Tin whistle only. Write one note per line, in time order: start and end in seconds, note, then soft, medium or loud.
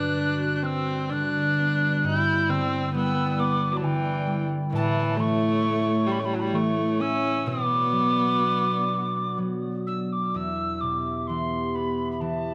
0.00 0.58 F#6 medium
0.58 0.67 F#6 medium
0.65 1.13 E6 medium
1.12 2.06 F#6 medium
2.05 2.51 G6 loud
2.50 2.94 E6 medium
2.96 3.41 E6 loud
3.39 3.78 D6 medium
3.76 3.85 A5 medium
3.84 4.47 G5 medium
4.75 5.21 A5 loud
5.20 6.13 C#6 loud
6.11 6.21 B5 medium
6.19 6.26 C#6 medium
6.24 6.34 B5 medium
6.33 6.41 A5 medium
6.39 6.56 B5 loud
6.54 7.02 C#6 loud
7.01 7.49 E6 loud
7.47 9.37 D6 loud
9.86 10.13 E6 medium
10.12 10.37 D6 medium
10.36 10.82 E6 medium
10.80 11.28 D6 medium
11.27 11.76 C6 medium
11.74 12.10 B5 medium
12.11 12.22 B5 medium
12.20 12.54 A5 medium